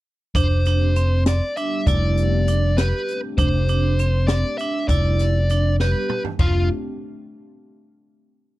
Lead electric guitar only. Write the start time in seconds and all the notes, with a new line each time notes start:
0.36 C5
1.28 D5
1.57 E5
1.87 D5
2.77 B4
3.38 C5
4.27 D5
4.58 E5
4.88 D5
5.81 B4
6.40 F4